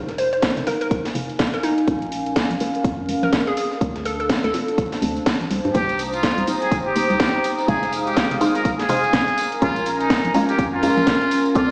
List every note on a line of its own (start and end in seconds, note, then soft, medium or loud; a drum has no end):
0.00 0.49 F1 medium
0.00 0.64 D#4 medium
0.00 2.52 D#4 medium
0.00 0.64 G#4 medium
0.00 0.63 A#4 medium
0.00 0.64 C5 medium
0.00 2.40 C5 medium
0.00 0.65 F5 loud
0.09 snare soft
0.09 closed hi-hat soft
0.18 0.28 C5 medium
0.18 closed hi-hat medium
0.18 open hi-hat loud
0.33 0.39 C5 medium
0.33 closed hi-hat soft
0.42 kick loud
0.42 snare loud
0.42 closed hi-hat medium
0.57 0.63 F1 loud
0.57 snare medium
0.57 closed hi-hat soft
0.67 1.13 D#4 medium
0.67 1.13 G#4 medium
0.67 0.76 A#4 medium
0.67 1.13 C5 medium
0.67 1.13 F5 medium
0.67 snare medium
0.67 closed hi-hat medium
0.67 open hi-hat loud
0.71 6.44 F5 medium
0.71 3.81 G#5 medium
0.81 0.87 A#4 medium
0.81 closed hi-hat soft
0.81 closed hi-hat medium
0.91 kick loud
0.91 closed hi-hat medium
1.05 snare soft
1.05 open hi-hat medium
1.15 1.33 F1 loud
1.15 1.62 D#4 medium
1.15 1.62 G#4 medium
1.15 1.62 C5 medium
1.15 1.62 F5 medium
1.15 closed hi-hat medium
1.15 open hi-hat loud
1.30 closed hi-hat soft
1.39 1.49 F1 medium
1.39 kick loud
1.39 snare loud
1.39 closed hi-hat medium
1.54 1.62 A#4 medium
1.54 snare soft
1.54 closed hi-hat soft
1.63 3.81 C#4 medium
1.63 2.32 D#4 medium
1.63 closed hi-hat medium
1.63 open hi-hat loud
1.78 3.81 A#4 medium
1.78 closed hi-hat soft
1.87 2.43 A#1 medium
1.87 2.58 G#3 medium
1.87 2.58 C#4 medium
1.87 2.58 F4 medium
1.87 2.58 A#4 loud
1.87 kick loud
1.87 closed hi-hat medium
2.02 closed hi-hat soft
2.12 closed hi-hat medium
2.12 open hi-hat loud
2.26 closed hi-hat soft
2.36 kick loud
2.36 snare loud
2.36 closed hi-hat medium
2.50 2.57 A#1 loud
2.50 closed hi-hat medium
2.60 3.06 G#3 medium
2.60 3.06 C#4 medium
2.60 3.06 F4 medium
2.60 3.06 A#4 medium
2.60 closed hi-hat medium
2.60 open hi-hat loud
2.75 closed hi-hat soft
2.84 3.15 F2 medium
2.84 kick loud
2.84 closed hi-hat medium
3.08 3.79 G#3 medium
3.08 3.79 C#4 medium
3.08 3.79 F4 medium
3.08 3.79 A#4 medium
3.08 closed hi-hat medium
3.08 open hi-hat loud
3.23 3.29 A#1 medium
3.23 3.35 A#4 medium
3.23 closed hi-hat soft
3.33 kick loud
3.33 snare loud
3.33 closed hi-hat medium
3.47 3.54 G#4 medium
3.47 closed hi-hat soft
3.57 3.66 G#4 medium
3.57 closed hi-hat medium
3.57 open hi-hat loud
3.71 snare soft
3.81 4.36 D2 medium
3.81 4.51 C4 medium
3.81 5.75 D4 medium
3.81 4.51 F4 medium
3.81 4.52 A4 medium
3.81 4.52 D5 loud
3.81 kick loud
3.81 closed hi-hat medium
3.96 snare soft
3.96 closed hi-hat soft
4.05 4.15 A4 medium
4.05 closed hi-hat medium
4.05 open hi-hat loud
4.20 4.26 A4 medium
4.20 closed hi-hat soft
4.29 kick loud
4.29 snare loud
4.29 closed hi-hat medium
4.39 10.27 C5 medium
4.44 4.50 D2 loud
4.44 5.11 A4 loud
4.44 snare medium
4.44 closed hi-hat soft
4.54 5.00 C4 medium
4.54 5.00 F4 medium
4.54 5.00 A4 medium
4.54 5.00 D5 medium
4.54 snare medium
4.54 closed hi-hat medium
4.54 open hi-hat loud
4.68 5.75 A5 medium
4.68 closed hi-hat soft
4.78 kick loud
4.78 closed hi-hat medium
4.92 snare soft
4.92 open hi-hat medium
5.02 5.20 D2 loud
5.02 5.72 C4 medium
5.02 5.72 F4 medium
5.02 5.73 A4 medium
5.02 5.73 D5 medium
5.02 closed hi-hat medium
5.02 open hi-hat loud
5.17 closed hi-hat soft
5.26 kick loud
5.26 snare loud
5.26 closed hi-hat medium
5.41 5.47 A1 medium
5.41 snare soft
5.41 closed hi-hat soft
5.51 5.60 C2 loud
5.51 closed hi-hat medium
5.51 open hi-hat loud
5.65 5.71 G2 medium
5.65 closed hi-hat soft
5.74 6.30 C2 loud
5.74 6.45 A#3 medium
5.74 6.45 D#4 medium
5.74 10.27 D#4 medium
5.74 6.00 G4 loud
5.74 6.45 G4 medium
5.74 7.66 C5 medium
5.74 6.45 C5 loud
5.74 7.66 A#5 medium
5.74 7.66 D#6 medium
5.74 kick loud
5.74 closed hi-hat medium
5.74 tambourine medium
5.89 closed hi-hat soft
5.89 tambourine soft
5.99 closed hi-hat medium
5.99 open hi-hat loud
5.99 tambourine medium
6.12 6.45 F4 medium
6.12 closed hi-hat soft
6.12 tambourine soft
6.23 7.68 G5 medium
6.23 kick loud
6.23 snare loud
6.23 closed hi-hat medium
6.38 6.44 C2 loud
6.38 closed hi-hat soft
6.47 6.93 A#3 medium
6.47 6.93 D#4 medium
6.47 6.93 G4 medium
6.47 6.94 C5 medium
6.47 closed hi-hat medium
6.47 open hi-hat loud
6.47 tambourine medium
6.62 6.77 G#4 medium
6.62 8.37 A#5 medium
6.62 closed hi-hat soft
6.62 tambourine soft
6.72 7.02 G1 medium
6.72 kick loud
6.72 closed hi-hat medium
6.72 tambourine soft
6.86 7.61 G4 loud
6.95 7.66 A#3 medium
6.95 7.66 D#4 medium
6.95 7.66 G4 medium
6.95 7.66 C5 medium
6.95 closed hi-hat medium
6.95 open hi-hat loud
6.95 tambourine medium
7.10 7.17 C2 medium
7.10 closed hi-hat soft
7.10 tambourine soft
7.20 kick loud
7.20 snare loud
7.20 closed hi-hat medium
7.20 tambourine soft
7.34 closed hi-hat soft
7.44 closed hi-hat medium
7.44 open hi-hat loud
7.44 tambourine medium
7.58 snare soft
7.58 tambourine soft
7.68 8.23 F1 loud
7.68 8.39 G#3 medium
7.68 9.36 G#3 medium
7.68 8.38 D#4 medium
7.68 7.94 G#4 loud
7.68 8.39 C5 medium
7.68 9.36 F5 medium
7.68 8.39 F5 loud
7.68 9.36 D#6 medium
7.68 kick loud
7.68 closed hi-hat medium
7.68 tambourine medium
7.83 snare soft
7.83 closed hi-hat soft
7.83 tambourine soft
7.92 closed hi-hat medium
7.92 open hi-hat medium
7.92 tambourine medium
8.07 8.39 G4 medium
8.07 closed hi-hat soft
8.07 tambourine soft
8.17 kick loud
8.17 snare loud
8.17 closed hi-hat medium
8.17 tambourine medium
8.31 8.38 F1 loud
8.31 snare medium
8.31 closed hi-hat medium
8.36 11.55 G#5 medium
8.41 8.87 D#4 medium
8.41 8.87 G#4 medium
8.41 8.87 C5 medium
8.41 8.87 F5 medium
8.41 snare medium
8.41 closed hi-hat medium
8.41 open hi-hat loud
8.41 tambourine medium
8.55 8.71 A#4 medium
8.55 closed hi-hat medium
8.55 closed hi-hat soft
8.55 tambourine soft
8.65 kick loud
8.65 closed hi-hat medium
8.65 tambourine medium
8.79 9.54 G#4 loud
8.79 snare soft
8.79 open hi-hat medium
8.89 9.07 F1 loud
8.89 9.36 D#4 medium
8.89 9.37 G#4 medium
8.89 9.37 C5 medium
8.89 9.37 F5 medium
8.89 closed hi-hat medium
8.89 open hi-hat loud
8.89 tambourine medium
9.04 closed hi-hat soft
9.04 tambourine soft
9.13 9.23 F1 loud
9.13 kick loud
9.13 snare loud
9.13 closed hi-hat medium
9.13 tambourine soft
9.28 snare soft
9.28 closed hi-hat soft
9.38 11.55 C#4 medium
9.38 11.53 A#4 medium
9.38 11.53 G#5 medium
9.38 11.53 A#5 medium
9.38 closed hi-hat medium
9.38 open hi-hat loud
9.38 tambourine medium
9.47 11.55 A#4 loud
9.52 closed hi-hat soft
9.62 10.17 A#1 loud
9.62 10.32 G#3 medium
9.62 10.32 C#4 medium
9.62 9.87 F4 loud
9.62 10.32 F4 medium
9.62 10.32 A#4 loud
9.62 kick loud
9.62 closed hi-hat medium
9.62 tambourine medium
9.76 closed hi-hat soft
9.76 tambourine soft
9.86 closed hi-hat medium
9.86 open hi-hat medium
9.86 tambourine medium
10.00 10.32 D#4 medium
10.00 closed hi-hat soft
10.00 tambourine soft
10.10 kick loud
10.10 snare loud
10.10 closed hi-hat medium
10.10 tambourine soft
10.25 10.31 A#1 loud
10.25 closed hi-hat medium
10.34 10.80 G#3 medium
10.34 10.80 C#4 medium
10.34 10.81 F4 medium
10.34 10.81 A#4 medium
10.34 closed hi-hat medium
10.34 open hi-hat medium
10.34 tambourine medium
10.49 10.64 G4 medium
10.49 closed hi-hat medium
10.49 tambourine soft
10.59 10.89 F2 medium
10.59 kick loud
10.59 closed hi-hat medium
10.59 tambourine medium
10.73 11.48 F4 loud
10.83 11.53 G#3 medium
10.83 11.53 C#4 medium
10.83 11.53 F4 medium
10.83 11.53 A#4 medium
10.83 closed hi-hat medium
10.83 open hi-hat loud
10.83 tambourine medium
10.97 11.04 A#1 medium
10.97 closed hi-hat soft
10.97 tambourine soft
11.07 kick loud
11.07 snare loud
11.07 closed hi-hat medium
11.21 closed hi-hat soft
11.31 closed hi-hat medium
11.31 open hi-hat loud
11.31 tambourine medium
11.46 closed hi-hat soft
11.46 tambourine soft
11.55 11.71 D2 medium
11.55 11.71 F3 medium
11.55 11.71 C4 loud
11.55 11.71 D4 medium
11.55 11.71 F4 loud
11.55 11.71 A4 medium
11.55 11.71 D5 medium
11.55 11.71 D5 loud
11.55 11.71 C6 medium
11.55 11.71 D6 medium
11.55 kick loud
11.55 closed hi-hat medium
11.55 tambourine medium